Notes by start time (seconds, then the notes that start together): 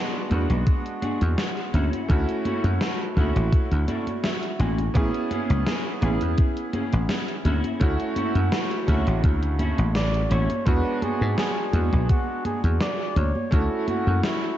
Already playing: G#3 B3 D4 F#4
0.30 E2 G#3 B3 D4 F#4 B4, closed hi-hat, high conga
0.50 B1, closed hi-hat, high conga
0.67 kick, closed hi-hat
0.86 closed hi-hat
1.02 D4 F#4 G#4, closed hi-hat, high conga
1.21 E2, closed hi-hat, high conga
1.38 snare, closed hi-hat, high conga
1.57 closed hi-hat
1.73 D2 C#4 E4 F#4, closed hi-hat, high conga
1.93 closed hi-hat, high conga
2.08 D2 A3 C#4 E4 F#4, kick, closed hi-hat, high conga
2.29 closed hi-hat
2.45 C#4 E4 F#4, closed hi-hat, high conga
2.64 F#2, closed hi-hat, high conga
2.81 snare, closed hi-hat, high conga
3.15 D2 A3 C#4 E4 F#4, kick, closed hi-hat, high conga
3.36 A1, closed hi-hat, high conga
3.52 kick, closed hi-hat, high conga
3.72 D2, closed hi-hat
3.87 C#4 E4 A4 D5, closed hi-hat, high conga
4.07 closed hi-hat, high conga
4.24 E5, snare, closed hi-hat, high conga
4.43 closed hi-hat
4.59 A1 C#4 E4 F#4 G#5, closed hi-hat, high conga
4.79 closed hi-hat, high conga
4.94 A1 B3 C#4 E4 G#4, kick, closed hi-hat, high conga
5.14 closed hi-hat
5.30 B3 C#4 G#4, closed hi-hat, high conga
5.50 C#2, closed hi-hat, high conga
5.67 snare, closed hi-hat, high conga
6.01 A1 B3 C#4 E4 G#4, closed hi-hat, high conga
6.21 E2, closed hi-hat, high conga
6.38 kick, closed hi-hat, high conga
6.57 closed hi-hat
6.73 B3 C#4 G#4, closed hi-hat, high conga
6.92 A1, closed hi-hat, high conga
7.09 snare, closed hi-hat, high conga
7.28 closed hi-hat
7.44 D2 C#4 E4 F#4, closed hi-hat, high conga
7.64 closed hi-hat, high conga
7.80 D2 A3 C#4 E4 F#4, kick, closed hi-hat, high conga
8.00 closed hi-hat
8.16 C#4 E4 F#4, closed hi-hat, high conga
8.35 F#2, closed hi-hat, high conga
8.52 snare, closed hi-hat, high conga
8.71 closed hi-hat
8.87 D2 C#3 A3 C#4 E4 F#4, kick, snare, closed hi-hat, high conga
9.07 A1, closed hi-hat, high conga
9.24 D2, kick, closed hi-hat, high conga
9.43 closed hi-hat
9.59 C#4 E4 F#4, closed hi-hat, high conga
9.78 A1, closed hi-hat, high conga
9.95 D5, snare, closed hi-hat, high conga
10.14 closed hi-hat
10.30 A1 C#4 E4 F#4 C#5, closed hi-hat, high conga
10.50 closed hi-hat, high conga
10.66 E2 G#3 B3 D4 F#4 B4, kick, closed hi-hat
11.02 G#4, closed hi-hat, high conga
11.21 G#2, high conga
11.38 G#4, snare, closed hi-hat, high conga
11.73 E2 G#3 B3 D4 F#4, closed hi-hat, high conga
11.93 B1, kick, high conga
12.09 F#4, kick, closed hi-hat, high conga
12.45 G#4, closed hi-hat, high conga
12.64 E2, closed hi-hat, high conga
12.81 D5, snare, closed hi-hat, high conga
13.16 D2 C#5, closed hi-hat, high conga
13.35 high conga
13.51 D2 A3 C#4 E4 F#4 A4, kick, closed hi-hat
13.88 F#4, closed hi-hat, high conga
14.07 F#2, high conga
14.23 E4, snare, closed hi-hat, high conga